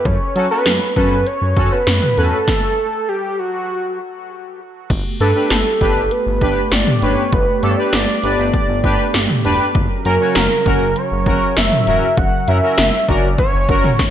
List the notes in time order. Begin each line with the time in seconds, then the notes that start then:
0.05 F#2 C#5, kick, closed hi-hat
0.36 F#3 C#4 F#4 A4, closed hi-hat
0.51 C#4 F#4 A4 B4
0.66 F#2, snare, closed hi-hat
0.96 F#2 C#4 F#4 A4 B4, kick, closed hi-hat
1.11 F#2
1.26 C#5, closed hi-hat
1.42 F#2
1.57 F#2 C#4 F#4 A4, kick, closed hi-hat
1.72 B4
1.87 F#2, snare, closed hi-hat
2.02 mid tom
2.17 E2 C#4 F#4 A4 B4, closed hi-hat
2.48 kick, snare
3.08 G4
3.39 F#4
4.90 G1 A3 B3 G4, kick, closed hi-hat, crash
5.20 G2 D4 G4 A4 B4, closed hi-hat
5.35 D4 G4 B4
5.50 G1 A4, snare, closed hi-hat
5.81 G1 D4 G4 B4, kick, closed hi-hat
5.96 G1
6.11 B4, closed hi-hat
6.26 G1
6.41 G1 D4 G4 B4, kick, closed hi-hat
6.72 G1 D5, snare, closed hi-hat
6.87 mid tom
7.02 F#1 D4 G4 B4 C#5, closed hi-hat
7.32 G1 B4, kick, closed hi-hat
7.63 G2 D4 G4 A4 D5, closed hi-hat
7.70 C#5
7.77 D4 G4 B4 D5
7.93 G1, snare, closed hi-hat
8.23 G1 D4 G4 B4, closed hi-hat
8.39 G1
8.54 kick, closed hi-hat
8.69 G1
8.84 G1 D4 G4 B4, kick, closed hi-hat
9.14 G1, snare, closed hi-hat
9.30 mid tom
9.44 E1 D4 G4 B4, closed hi-hat
9.75 F#1 C#3 F#3 A#4, kick, closed hi-hat
10.05 F#2 C#4 F#4 A#4, closed hi-hat
10.20 C#4 F#4 C#5
10.35 F#1 A#4, snare, closed hi-hat
10.66 F#1 C#4 F#4 A#4, kick, closed hi-hat
10.81 F#1
10.96 C#5, closed hi-hat
11.11 F#1
11.26 F#1 C#4 F#4 A#4, kick, closed hi-hat
11.57 F#1 E5, snare, closed hi-hat
11.72 mid tom
11.87 E1 C#4 F#4 A#4, closed hi-hat
12.17 F#1 F#5, kick, closed hi-hat
12.48 F#2 C#4 F#4 A#4 E5, closed hi-hat
12.63 C#4 F#4 A#4
12.78 F#1, snare, closed hi-hat
13.08 F#1 C#4 F#4 A#4 D5, kick, closed hi-hat
13.23 F#1
13.38 C#5, kick, closed hi-hat
13.54 F#1
13.69 F#1 C#4 F#4 A#4, kick, closed hi-hat
13.84 mid tom
13.99 kick, snare